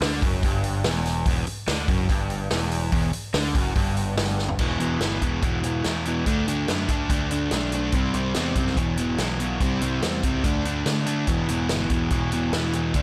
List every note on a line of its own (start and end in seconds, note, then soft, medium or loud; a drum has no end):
0.01 0.20 D2 medium
0.01 0.22 D3 loud
0.01 snare loud
0.01 open hi-hat medium
0.22 0.41 F#1 medium
0.22 0.43 F#2 medium
0.22 kick loud
0.22 open hi-hat medium
0.43 0.82 G1 loud
0.43 0.85 G2 medium
0.43 kick loud
0.43 open hi-hat medium
0.64 open hi-hat medium
0.84 1.23 E1 loud
0.84 1.26 E2 medium
0.84 snare loud
0.84 open hi-hat medium
1.06 snare soft
1.06 open hi-hat medium
1.26 1.45 E1 medium
1.26 1.46 E2 loud
1.26 kick loud
1.26 open hi-hat medium
1.47 muted picked electric bass stroke soft
1.47 muted overdriven electric guitar stroke medium
1.47 open hi-hat medium
1.68 1.87 D2 medium
1.68 1.88 D3 loud
1.68 snare loud
1.68 open hi-hat medium
1.88 2.08 F#1 medium
1.88 2.09 F#2 loud
1.88 kick loud
1.88 open hi-hat medium
2.09 2.48 G1 loud
2.09 2.51 G2 medium
2.09 kick loud
2.09 open hi-hat medium
2.30 open hi-hat medium
2.50 2.89 E1 loud
2.50 2.91 E2 medium
2.50 snare loud
2.50 open hi-hat medium
2.71 open hi-hat medium
2.92 3.12 E1 medium
2.92 3.12 E2 loud
2.92 kick medium
2.92 open hi-hat medium
3.13 muted overdriven electric guitar stroke medium
3.13 open hi-hat medium
3.34 3.53 D2 medium
3.34 3.54 D3 loud
3.34 snare loud
3.34 open hi-hat medium
3.55 3.74 F#1 medium
3.55 3.75 F#2 loud
3.55 kick loud
3.55 open hi-hat medium
3.76 4.14 G1 medium
3.76 4.16 G2 medium
3.76 kick medium
3.76 open hi-hat medium
3.97 open hi-hat medium
4.17 4.56 G1 medium
4.17 4.58 G2 medium
4.17 snare loud
4.17 open hi-hat medium
4.39 snare medium
4.49 floor tom medium
4.59 4.78 E1 medium
4.59 4.78 E2 medium
4.59 4.79 B2 medium
4.59 4.79 E3 medium
4.59 kick medium
4.59 crash medium
4.79 4.99 E1 medium
4.79 5.00 E2 medium
4.79 5.00 B2 medium
4.79 5.01 E3 medium
4.79 closed hi-hat medium
5.00 5.19 G1 medium
5.00 5.21 E2 medium
5.00 5.22 B2 medium
5.00 5.22 E3 loud
5.00 snare loud
5.00 closed hi-hat medium
5.22 5.41 E1 medium
5.22 5.42 E2 medium
5.22 5.43 B2 medium
5.22 5.43 E3 medium
5.22 kick medium
5.22 closed hi-hat medium
5.42 5.81 E1 medium
5.42 5.63 E2 medium
5.42 5.63 B2 medium
5.42 5.63 E3 medium
5.42 kick loud
5.42 closed hi-hat medium
5.63 5.84 E2 medium
5.63 5.84 B2 medium
5.63 5.84 E3 medium
5.63 closed hi-hat medium
5.84 6.05 E2 medium
5.84 6.23 E2 medium
5.84 6.06 B2 medium
5.84 6.06 E3 medium
5.84 snare medium
5.84 closed hi-hat medium
6.05 6.25 E2 medium
6.05 6.26 B2 medium
6.05 6.26 E3 medium
6.05 closed hi-hat medium
6.26 6.46 D2 medium
6.26 6.47 D3 medium
6.26 6.47 A3 loud
6.26 6.48 D4 loud
6.26 kick medium
6.26 closed hi-hat medium
6.47 6.66 D2 medium
6.47 6.68 D3 medium
6.47 6.69 A3 medium
6.47 6.69 D4 medium
6.47 closed hi-hat medium
6.68 6.87 F#2 medium
6.68 6.88 D3 medium
6.68 6.89 A3 medium
6.68 6.89 D4 medium
6.68 snare medium
6.68 closed hi-hat medium
6.88 7.08 D2 medium
6.88 7.09 D3 medium
6.88 7.10 A3 medium
6.88 7.10 D4 medium
6.88 kick medium
6.88 closed hi-hat medium
7.10 7.48 D2 medium
7.10 7.30 D3 medium
7.10 7.31 A3 medium
7.10 7.31 D4 medium
7.10 kick loud
7.10 closed hi-hat medium
7.31 7.51 D3 medium
7.31 7.52 A3 medium
7.31 7.52 D4 medium
7.31 closed hi-hat medium
7.51 7.90 B1 medium
7.51 7.72 D3 medium
7.51 7.73 A3 medium
7.51 7.73 D4 medium
7.51 snare loud
7.51 closed hi-hat medium
7.72 7.93 D3 medium
7.72 7.93 A3 medium
7.72 7.93 D4 medium
7.72 closed hi-hat medium
7.92 8.12 C2 medium
7.92 8.14 C3 medium
7.92 8.15 G3 medium
7.92 8.15 C4 loud
7.92 kick medium
7.92 closed hi-hat medium
8.14 8.33 C2 medium
8.14 8.34 C3 medium
8.14 8.35 G3 medium
8.14 8.35 C4 medium
8.14 closed hi-hat medium
8.34 8.55 E2 medium
8.34 8.55 C3 medium
8.34 8.56 G3 loud
8.34 8.56 C4 loud
8.34 snare medium
8.34 closed hi-hat medium
8.55 8.75 F#2 medium
8.55 8.76 C3 medium
8.55 8.76 G3 medium
8.55 8.76 C4 medium
8.55 kick medium
8.55 closed hi-hat medium
8.67 snare soft
8.77 9.15 E1 medium
8.77 8.97 E2 medium
8.77 8.98 B2 medium
8.77 8.98 E3 medium
8.77 kick medium
8.77 closed hi-hat medium
8.97 9.18 E2 medium
8.97 9.18 B2 medium
8.97 9.18 E3 medium
8.97 closed hi-hat medium
9.18 9.57 B1 medium
9.18 9.38 E2 medium
9.18 9.39 B2 medium
9.18 9.39 E3 medium
9.18 snare loud
9.18 closed hi-hat medium
9.40 9.59 E2 medium
9.40 9.59 B2 medium
9.40 9.60 E3 medium
9.40 closed hi-hat medium
9.60 9.79 C2 medium
9.60 9.81 C3 medium
9.60 9.81 G3 loud
9.60 9.82 C4 loud
9.60 kick medium
9.60 closed hi-hat medium
9.81 10.01 C2 medium
9.81 10.01 C3 medium
9.81 10.02 G3 medium
9.81 10.03 C4 medium
9.81 closed hi-hat medium
10.02 10.21 E2 medium
10.02 10.23 C3 medium
10.02 10.23 G3 medium
10.02 10.24 C4 loud
10.02 snare loud
10.02 closed hi-hat medium
10.23 10.42 C#2 medium
10.23 10.43 C3 medium
10.23 10.43 G3 medium
10.23 10.44 C4 medium
10.23 kick medium
10.23 closed hi-hat medium
10.44 10.82 D2 medium
10.44 10.64 D3 medium
10.44 10.64 A3 medium
10.44 10.65 D4 medium
10.44 kick loud
10.44 closed hi-hat medium
10.65 10.84 D3 medium
10.65 10.85 A3 medium
10.65 10.85 D4 medium
10.65 closed hi-hat medium
10.86 11.05 D3 medium
10.86 11.24 D3 medium
10.86 11.05 A3 medium
10.86 11.06 D4 medium
10.86 snare medium
10.86 closed hi-hat medium
11.06 11.26 D3 medium
11.06 11.26 A3 medium
11.06 11.26 D4 medium
11.06 closed hi-hat medium
11.27 11.47 E1 medium
11.27 11.48 E2 loud
11.27 11.48 B2 medium
11.27 11.49 E3 loud
11.27 kick medium
11.27 closed hi-hat medium
11.48 11.67 E1 medium
11.48 11.68 E2 medium
11.48 11.69 B2 medium
11.48 11.69 E3 medium
11.48 closed hi-hat medium
11.69 11.88 G1 medium
11.69 11.89 E2 medium
11.69 11.89 B2 medium
11.69 11.90 E3 medium
11.69 snare loud
11.69 closed hi-hat medium
11.90 12.09 E1 medium
11.90 12.10 E2 medium
11.90 12.10 B2 medium
11.90 12.11 E3 medium
11.90 kick medium
11.90 closed hi-hat medium
12.10 12.49 E1 medium
12.10 12.32 E2 medium
12.10 12.32 B2 medium
12.10 12.33 E3 medium
12.10 kick loud
12.10 closed hi-hat medium
12.32 12.52 E2 medium
12.32 12.52 B2 medium
12.32 12.53 E3 medium
12.32 closed hi-hat medium
12.52 12.91 E2 medium
12.52 12.73 E2 medium
12.52 12.74 B2 medium
12.52 12.74 E3 medium
12.52 snare loud
12.52 closed hi-hat medium
12.73 12.94 E2 medium
12.73 12.94 B2 medium
12.73 12.94 E3 medium
12.73 closed hi-hat medium
12.94 13.02 D2 medium
12.94 13.02 D3 loud
12.94 13.02 A3 medium
12.94 13.02 D4 loud
12.94 kick medium
12.94 closed hi-hat medium